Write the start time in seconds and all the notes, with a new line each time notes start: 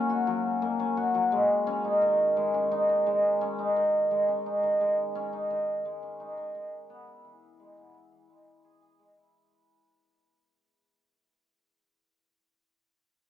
Already playing: F#3 A#3 C#4 D#4
0.10 F#4
0.27 F#3
0.62 A#3
0.80 C#4
0.97 F#4
1.15 F#3
1.32 G#3
1.67 C#4
1.84 D#4
2.02 D#3
2.37 G#3
2.54 C#4
2.72 D#4
2.89 D#3
3.06 G#3
3.41 C#4
3.59 D#4
3.76 D#3
4.11 G#3
4.29 C#4
4.46 D#4
4.63 D#3
4.81 G#3
5.15 C#4
5.33 D#4
5.50 D#3
5.85 G#3
6.03 C#4
6.20 D#4
6.37 D#3
6.55 G#3
6.90 B3
7.07 E4
7.25 E3
7.59 G#3
7.77 B3
7.94 E4
8.12 E3
8.30 G#3
8.64 G#4
8.82 G#4
8.99 G#3
9.17 E4
9.52 B4